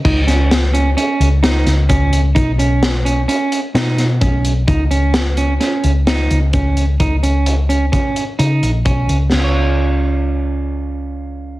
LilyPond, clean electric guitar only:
\new Staff \with { instrumentName = "Clean electric guitar" } { \time 5/4 \key des \mixolydian \tempo 4 = 129 ees'8 des'4 des'8 des'4 ees'4 des'4 | ees'8 des'4 des'8 des'4 ees'4 des'4 | ees'8 des'4 des'8 des'4 ees'4 des'4 | ees'8 des'4 des'8 des'4 ees'4 des'4 |
<des' f' aes' des''>1~ <des' f' aes' des''>4 | }